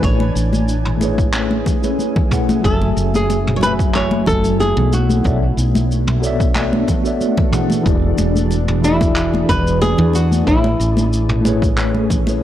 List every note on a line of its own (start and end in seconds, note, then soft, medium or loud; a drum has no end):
0.01 0.30 A1 medium
0.01 0.20 A3 medium
0.01 2.62 A3 medium
0.01 2.62 C#4 medium
0.01 0.21 E4 medium
0.01 0.21 G#4 medium
0.01 2.62 G#4 medium
0.01 0.22 B4 medium
0.01 1.95 C#5 medium
0.01 0.22 C#5 medium
0.01 kick loud
0.01 cabasa soft
0.20 muted conga medium
0.35 1.62 A1 medium
0.35 cabasa medium
0.53 muted conga soft
0.53 high conga medium
0.53 cabasa medium
0.69 cabasa soft
0.85 mid tom medium
0.97 1.78 A3 medium
0.97 1.78 E4 medium
0.97 1.79 G#4 medium
0.97 muted conga medium
1.02 1.80 B4 medium
1.02 1.81 C#5 loud
1.02 cabasa loud
1.18 kick loud
1.18 cabasa medium
1.33 clap medium
1.33 muted conga soft
1.33 cabasa medium
1.51 high conga medium
1.66 kick medium
1.66 low conga medium
1.66 cabasa medium
1.81 2.27 A3 medium
1.81 2.27 E4 medium
1.81 2.28 G#4 medium
1.81 2.28 B4 medium
1.81 2.29 C#5 medium
1.81 muted conga medium
1.81 cabasa medium
1.99 high conga medium
1.99 cabasa soft
2.16 kick loud
2.16 muted conga soft
2.16 low conga medium
2.29 2.59 A3 medium
2.29 2.60 E4 medium
2.29 2.60 G#4 medium
2.29 2.61 B4 medium
2.29 kick medium
2.29 mid tom medium
2.29 cabasa medium
2.33 2.61 F#5 medium
2.49 high conga medium
2.49 cabasa medium
2.60 3.56 F#3 medium
2.60 4.90 A3 medium
2.60 3.57 F#4 medium
2.64 2.91 F#1 medium
2.64 4.90 F#3 medium
2.64 3.59 A3 medium
2.64 4.90 E4 medium
2.64 3.11 A4 medium
2.64 3.58 G#5 medium
2.64 4.90 G#5 medium
2.64 kick loud
2.64 cabasa soft
2.68 3.60 E5 medium
2.81 muted conga soft
2.97 4.23 F#1 medium
2.97 cabasa medium
3.14 3.53 G#4 medium
3.14 high conga medium
3.14 cabasa soft
3.30 muted conga medium
3.30 cabasa soft
3.47 mid tom medium
3.56 4.89 F#3 medium
3.56 4.90 F#4 medium
3.56 3.62 C#5 medium
3.61 4.92 A3 medium
3.61 3.71 B4 medium
3.61 4.91 G#5 medium
3.61 muted conga soft
3.61 high conga medium
3.61 cabasa loud
3.66 4.93 E5 loud
3.79 kick loud
3.79 cabasa medium
3.95 4.27 C#5 medium
3.95 clap medium
3.95 cabasa soft
4.11 muted conga medium
4.11 high conga medium
4.26 4.72 F#1 loud
4.26 4.60 A4 medium
4.26 kick medium
4.26 low conga medium
4.26 cabasa medium
4.44 muted conga soft
4.44 cabasa medium
4.60 4.94 G#4 medium
4.60 high conga medium
4.60 cabasa soft
4.77 5.20 B1 medium
4.77 low conga medium
4.92 7.51 A3 medium
4.92 7.51 B3 medium
4.92 10.43 D4 medium
4.92 5.54 F#4 medium
4.92 muted conga medium
4.92 cabasa medium
5.10 high conga loud
5.10 cabasa medium
5.23 5.52 B1 medium
5.23 5.42 B3 medium
5.23 5.43 F#4 medium
5.23 5.43 A4 medium
5.23 5.44 C#5 medium
5.23 5.44 D5 medium
5.23 kick loud
5.23 muted conga medium
5.23 cabasa soft
5.27 5.44 E5 medium
5.57 6.83 B1 medium
5.57 cabasa medium
5.75 muted conga medium
5.75 high conga medium
5.75 cabasa medium
5.91 cabasa soft
6.07 mid tom medium
6.07 muted conga medium
6.19 6.99 B3 medium
6.19 7.00 F#4 medium
6.19 7.01 A4 medium
6.23 7.02 C#5 medium
6.23 7.02 D5 medium
6.23 7.03 E5 loud
6.23 cabasa medium
6.40 kick loud
6.40 cabasa medium
6.55 clap medium
6.55 muted conga medium
6.55 cabasa soft
6.73 high conga medium
6.88 kick medium
6.88 muted conga soft
6.88 low conga medium
6.88 cabasa medium
7.03 7.49 B3 medium
7.03 7.49 F#4 medium
7.03 7.49 A4 medium
7.03 7.50 C#5 medium
7.03 7.50 D5 medium
7.03 7.51 E5 medium
7.03 cabasa medium
7.21 high conga medium
7.21 cabasa medium
7.37 kick loud
7.37 muted conga medium
7.37 low conga medium
7.51 7.80 E3 medium
7.51 10.44 E3 medium
7.51 7.81 E4 medium
7.51 7.82 F#4 medium
7.51 10.44 G#4 medium
7.51 7.82 G#4 medium
7.51 7.83 F#5 medium
7.51 mid tom medium
7.51 cabasa medium
7.70 muted conga soft
7.70 high conga medium
7.70 cabasa medium
7.82 8.78 E3 medium
7.82 8.79 E4 medium
7.82 8.80 F#4 medium
7.86 8.13 E1 medium
7.86 8.81 G#4 medium
7.86 8.82 D5 loud
7.86 kick loud
7.86 cabasa soft
8.18 9.44 E1 medium
8.18 muted conga medium
8.18 cabasa medium
8.36 high conga medium
8.36 cabasa medium
8.51 muted conga medium
8.51 cabasa soft
8.68 mid tom medium
8.80 10.41 E3 medium
8.80 10.42 E4 medium
8.80 10.43 F#4 medium
8.84 9.51 E4 loud
8.84 10.44 G#4 medium
8.84 10.45 D5 loud
8.84 high conga medium
8.84 cabasa medium
9.01 kick loud
9.01 muted conga medium
9.01 cabasa medium
9.16 clap medium
9.16 cabasa medium
9.34 muted conga soft
9.34 high conga medium
9.49 9.94 E1 loud
9.49 9.81 B4 loud
9.49 kick medium
9.49 low conga medium
9.49 cabasa medium
9.67 cabasa medium
9.82 10.15 G#4 loud
9.82 muted conga medium
9.82 high conga medium
9.82 cabasa soft
9.98 10.42 E2 loud
9.98 low conga medium
10.14 10.47 F#4 medium
10.14 muted conga soft
10.14 cabasa medium
10.32 high conga medium
10.32 cabasa medium
10.45 10.74 A1 loud
10.45 10.64 A3 medium
10.45 12.43 A3 medium
10.45 12.43 C#4 medium
10.45 10.65 E4 medium
10.45 12.43 E4 medium
10.45 12.43 G#4 medium
10.45 10.65 G#4 medium
10.45 10.66 B4 medium
10.45 10.66 C#5 loud
10.45 kick loud
10.45 cabasa soft
10.64 muted conga medium
10.80 12.43 A1 medium
10.80 cabasa medium
10.97 muted conga soft
10.97 high conga medium
10.97 cabasa medium
11.13 cabasa medium
11.29 mid tom medium
11.41 12.21 A3 medium
11.41 12.22 E4 medium
11.45 12.23 G#4 medium
11.45 12.24 B4 medium
11.45 12.25 C#5 loud
11.45 muted conga medium
11.45 cabasa medium
11.62 kick medium
11.62 cabasa medium
11.78 clap medium
11.78 muted conga medium
11.78 cabasa medium
11.95 high conga medium
12.10 kick medium
12.10 low conga medium
12.10 cabasa medium
12.26 12.43 A3 medium
12.26 12.43 E4 medium
12.26 12.43 G#4 medium
12.26 12.43 B4 medium
12.26 12.43 C#5 medium
12.26 muted conga medium
12.26 cabasa medium